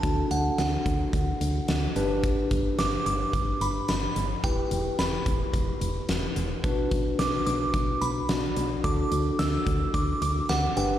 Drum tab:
HH |xxxxxxxx|xxxxxxxx|xxxxxxxx|xxxxxxxx|
SD |--o---o-|--o---o-|--o---o-|--o---o-|
BD |o--oo---|oo--o---|o--oo---|oo--o---|

HH |xxxxxxxx|
SD |--o---o-|
BD |o--oo---|